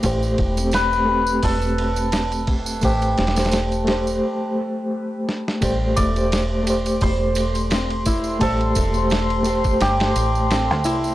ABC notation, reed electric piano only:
X:1
M:4/4
L:1/16
Q:"Swing 16ths" 1/4=86
K:Am
V:1 name="Reed electric piano"
[A,Gc]3 [A,CG]3 [A,CG]8- [A,CG]2 | [A,Gc]3 [A,Gc]3 [A,Gc]2 z8 | [A,Gc]3 [A,Gc]3 [A,Gc]8- [A,Gc]2 | [A,Gc]3 [A,Gc]3 [A,Gc]8- [A,Gc]2 |]